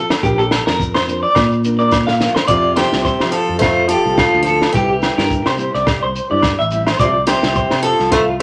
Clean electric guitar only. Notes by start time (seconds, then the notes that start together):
Already playing: A4
0.23 G4
0.38 A4
0.66 A#4
0.94 C5
1.23 D5
1.79 D5
2.07 F5
2.35 C5
2.48 D5
2.76 C5
3.05 C5
3.33 A4
3.62 F4
3.90 G4
4.18 F4
4.47 A4
4.75 G4
5.18 A#4
5.47 C5
5.75 D5
6.03 C5
6.31 D5
6.59 E5
6.88 C5
7.00 D5
7.28 C5
7.56 C5
7.84 A4
8.12 F4